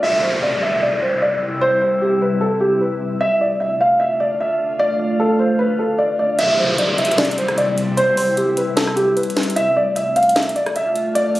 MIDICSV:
0, 0, Header, 1, 5, 480
1, 0, Start_track
1, 0, Key_signature, 0, "major"
1, 0, Tempo, 397351
1, 34, Time_signature, 4, 2, 24, 8
1, 13770, End_track
2, 0, Start_track
2, 0, Title_t, "Grand piano"
2, 0, Program_c, 0, 0
2, 34, Note_on_c, 0, 76, 109
2, 249, Note_off_c, 0, 76, 0
2, 274, Note_on_c, 0, 72, 69
2, 489, Note_off_c, 0, 72, 0
2, 515, Note_on_c, 0, 74, 83
2, 729, Note_off_c, 0, 74, 0
2, 755, Note_on_c, 0, 76, 80
2, 969, Note_off_c, 0, 76, 0
2, 994, Note_on_c, 0, 74, 79
2, 1209, Note_off_c, 0, 74, 0
2, 1235, Note_on_c, 0, 72, 77
2, 1449, Note_off_c, 0, 72, 0
2, 1474, Note_on_c, 0, 74, 85
2, 1925, Note_off_c, 0, 74, 0
2, 1950, Note_on_c, 0, 72, 110
2, 2167, Note_off_c, 0, 72, 0
2, 2197, Note_on_c, 0, 72, 85
2, 2410, Note_off_c, 0, 72, 0
2, 2433, Note_on_c, 0, 67, 69
2, 2648, Note_off_c, 0, 67, 0
2, 2680, Note_on_c, 0, 71, 73
2, 2892, Note_off_c, 0, 71, 0
2, 2909, Note_on_c, 0, 69, 82
2, 3126, Note_off_c, 0, 69, 0
2, 3147, Note_on_c, 0, 67, 79
2, 3365, Note_off_c, 0, 67, 0
2, 3395, Note_on_c, 0, 71, 71
2, 3846, Note_off_c, 0, 71, 0
2, 3873, Note_on_c, 0, 76, 103
2, 4088, Note_off_c, 0, 76, 0
2, 4118, Note_on_c, 0, 74, 80
2, 4331, Note_off_c, 0, 74, 0
2, 4351, Note_on_c, 0, 76, 76
2, 4567, Note_off_c, 0, 76, 0
2, 4598, Note_on_c, 0, 77, 86
2, 4811, Note_off_c, 0, 77, 0
2, 4830, Note_on_c, 0, 76, 85
2, 5046, Note_off_c, 0, 76, 0
2, 5075, Note_on_c, 0, 74, 91
2, 5289, Note_off_c, 0, 74, 0
2, 5321, Note_on_c, 0, 76, 86
2, 5769, Note_off_c, 0, 76, 0
2, 5791, Note_on_c, 0, 74, 109
2, 6007, Note_off_c, 0, 74, 0
2, 6033, Note_on_c, 0, 74, 78
2, 6248, Note_off_c, 0, 74, 0
2, 6278, Note_on_c, 0, 69, 84
2, 6491, Note_off_c, 0, 69, 0
2, 6513, Note_on_c, 0, 72, 82
2, 6728, Note_off_c, 0, 72, 0
2, 6751, Note_on_c, 0, 71, 92
2, 6967, Note_off_c, 0, 71, 0
2, 6996, Note_on_c, 0, 69, 69
2, 7210, Note_off_c, 0, 69, 0
2, 7230, Note_on_c, 0, 74, 86
2, 7446, Note_off_c, 0, 74, 0
2, 7480, Note_on_c, 0, 74, 88
2, 7692, Note_off_c, 0, 74, 0
2, 7716, Note_on_c, 0, 76, 107
2, 7930, Note_off_c, 0, 76, 0
2, 7957, Note_on_c, 0, 72, 72
2, 8171, Note_off_c, 0, 72, 0
2, 8197, Note_on_c, 0, 74, 82
2, 8410, Note_off_c, 0, 74, 0
2, 8436, Note_on_c, 0, 76, 83
2, 8650, Note_off_c, 0, 76, 0
2, 8674, Note_on_c, 0, 74, 85
2, 8888, Note_off_c, 0, 74, 0
2, 8918, Note_on_c, 0, 72, 79
2, 9131, Note_off_c, 0, 72, 0
2, 9152, Note_on_c, 0, 74, 91
2, 9604, Note_off_c, 0, 74, 0
2, 9630, Note_on_c, 0, 72, 115
2, 9846, Note_off_c, 0, 72, 0
2, 9875, Note_on_c, 0, 72, 88
2, 10089, Note_off_c, 0, 72, 0
2, 10112, Note_on_c, 0, 67, 69
2, 10328, Note_off_c, 0, 67, 0
2, 10358, Note_on_c, 0, 71, 77
2, 10571, Note_off_c, 0, 71, 0
2, 10589, Note_on_c, 0, 69, 83
2, 10806, Note_off_c, 0, 69, 0
2, 10825, Note_on_c, 0, 67, 83
2, 11044, Note_off_c, 0, 67, 0
2, 11072, Note_on_c, 0, 71, 75
2, 11524, Note_off_c, 0, 71, 0
2, 11550, Note_on_c, 0, 76, 102
2, 11767, Note_off_c, 0, 76, 0
2, 11796, Note_on_c, 0, 74, 85
2, 12010, Note_off_c, 0, 74, 0
2, 12029, Note_on_c, 0, 76, 83
2, 12246, Note_off_c, 0, 76, 0
2, 12275, Note_on_c, 0, 77, 84
2, 12489, Note_off_c, 0, 77, 0
2, 12510, Note_on_c, 0, 76, 86
2, 12727, Note_off_c, 0, 76, 0
2, 12754, Note_on_c, 0, 74, 91
2, 12968, Note_off_c, 0, 74, 0
2, 12999, Note_on_c, 0, 76, 90
2, 13448, Note_off_c, 0, 76, 0
2, 13471, Note_on_c, 0, 74, 113
2, 13687, Note_off_c, 0, 74, 0
2, 13713, Note_on_c, 0, 74, 78
2, 13770, Note_off_c, 0, 74, 0
2, 13770, End_track
3, 0, Start_track
3, 0, Title_t, "Ambient pad"
3, 0, Program_c, 1, 92
3, 34, Note_on_c, 1, 48, 81
3, 34, Note_on_c, 1, 55, 73
3, 34, Note_on_c, 1, 64, 89
3, 3835, Note_off_c, 1, 64, 0
3, 3836, Note_off_c, 1, 48, 0
3, 3836, Note_off_c, 1, 55, 0
3, 3873, Note_on_c, 1, 50, 84
3, 3873, Note_on_c, 1, 57, 77
3, 3873, Note_on_c, 1, 65, 89
3, 7675, Note_off_c, 1, 50, 0
3, 7675, Note_off_c, 1, 57, 0
3, 7675, Note_off_c, 1, 65, 0
3, 7715, Note_on_c, 1, 55, 76
3, 7716, Note_on_c, 1, 48, 81
3, 7716, Note_on_c, 1, 64, 93
3, 11516, Note_off_c, 1, 55, 0
3, 11516, Note_off_c, 1, 64, 0
3, 11517, Note_off_c, 1, 48, 0
3, 11554, Note_on_c, 1, 50, 84
3, 11554, Note_on_c, 1, 65, 91
3, 11555, Note_on_c, 1, 57, 73
3, 13770, Note_off_c, 1, 50, 0
3, 13770, Note_off_c, 1, 57, 0
3, 13770, Note_off_c, 1, 65, 0
3, 13770, End_track
4, 0, Start_track
4, 0, Title_t, "Downlifter"
4, 0, Program_c, 2, 103
4, 34, Note_on_c, 2, 60, 81
4, 3874, Note_off_c, 2, 60, 0
4, 7715, Note_on_c, 2, 60, 84
4, 11554, Note_off_c, 2, 60, 0
4, 13770, End_track
5, 0, Start_track
5, 0, Title_t, "Drums"
5, 7715, Note_on_c, 9, 42, 86
5, 7836, Note_off_c, 9, 42, 0
5, 8194, Note_on_c, 9, 42, 78
5, 8315, Note_off_c, 9, 42, 0
5, 8435, Note_on_c, 9, 42, 68
5, 8515, Note_off_c, 9, 42, 0
5, 8515, Note_on_c, 9, 42, 72
5, 8595, Note_off_c, 9, 42, 0
5, 8595, Note_on_c, 9, 42, 69
5, 8675, Note_off_c, 9, 42, 0
5, 8675, Note_on_c, 9, 38, 112
5, 8675, Note_on_c, 9, 42, 68
5, 8755, Note_off_c, 9, 42, 0
5, 8755, Note_on_c, 9, 42, 71
5, 8796, Note_off_c, 9, 38, 0
5, 8835, Note_off_c, 9, 42, 0
5, 8835, Note_on_c, 9, 42, 69
5, 8914, Note_off_c, 9, 42, 0
5, 8914, Note_on_c, 9, 42, 76
5, 9035, Note_off_c, 9, 42, 0
5, 9041, Note_on_c, 9, 42, 43
5, 9042, Note_on_c, 9, 37, 99
5, 9153, Note_off_c, 9, 42, 0
5, 9153, Note_on_c, 9, 42, 76
5, 9162, Note_off_c, 9, 37, 0
5, 9274, Note_off_c, 9, 42, 0
5, 9394, Note_on_c, 9, 42, 78
5, 9515, Note_off_c, 9, 42, 0
5, 9634, Note_on_c, 9, 42, 87
5, 9755, Note_off_c, 9, 42, 0
5, 9873, Note_on_c, 9, 46, 76
5, 9993, Note_off_c, 9, 46, 0
5, 10114, Note_on_c, 9, 42, 81
5, 10235, Note_off_c, 9, 42, 0
5, 10353, Note_on_c, 9, 42, 80
5, 10474, Note_off_c, 9, 42, 0
5, 10592, Note_on_c, 9, 42, 72
5, 10594, Note_on_c, 9, 38, 116
5, 10712, Note_off_c, 9, 42, 0
5, 10714, Note_off_c, 9, 38, 0
5, 10720, Note_on_c, 9, 37, 99
5, 10834, Note_on_c, 9, 42, 72
5, 10841, Note_off_c, 9, 37, 0
5, 10955, Note_off_c, 9, 42, 0
5, 11074, Note_on_c, 9, 42, 66
5, 11154, Note_off_c, 9, 42, 0
5, 11154, Note_on_c, 9, 42, 66
5, 11234, Note_off_c, 9, 42, 0
5, 11234, Note_on_c, 9, 42, 69
5, 11314, Note_off_c, 9, 42, 0
5, 11314, Note_on_c, 9, 38, 95
5, 11314, Note_on_c, 9, 42, 67
5, 11394, Note_off_c, 9, 42, 0
5, 11394, Note_on_c, 9, 42, 65
5, 11435, Note_off_c, 9, 38, 0
5, 11474, Note_off_c, 9, 42, 0
5, 11474, Note_on_c, 9, 42, 68
5, 11553, Note_off_c, 9, 42, 0
5, 11553, Note_on_c, 9, 42, 86
5, 11674, Note_off_c, 9, 42, 0
5, 12034, Note_on_c, 9, 42, 78
5, 12155, Note_off_c, 9, 42, 0
5, 12274, Note_on_c, 9, 42, 70
5, 12354, Note_off_c, 9, 42, 0
5, 12354, Note_on_c, 9, 42, 69
5, 12434, Note_off_c, 9, 42, 0
5, 12434, Note_on_c, 9, 42, 70
5, 12514, Note_off_c, 9, 42, 0
5, 12514, Note_on_c, 9, 38, 120
5, 12514, Note_on_c, 9, 42, 70
5, 12594, Note_off_c, 9, 42, 0
5, 12594, Note_on_c, 9, 42, 71
5, 12635, Note_off_c, 9, 38, 0
5, 12674, Note_off_c, 9, 42, 0
5, 12674, Note_on_c, 9, 42, 71
5, 12755, Note_off_c, 9, 42, 0
5, 12755, Note_on_c, 9, 42, 72
5, 12876, Note_off_c, 9, 42, 0
5, 12882, Note_on_c, 9, 37, 97
5, 12882, Note_on_c, 9, 42, 42
5, 12994, Note_off_c, 9, 42, 0
5, 12994, Note_on_c, 9, 42, 76
5, 13003, Note_off_c, 9, 37, 0
5, 13115, Note_off_c, 9, 42, 0
5, 13234, Note_on_c, 9, 42, 78
5, 13355, Note_off_c, 9, 42, 0
5, 13475, Note_on_c, 9, 42, 88
5, 13595, Note_off_c, 9, 42, 0
5, 13713, Note_on_c, 9, 46, 76
5, 13770, Note_off_c, 9, 46, 0
5, 13770, End_track
0, 0, End_of_file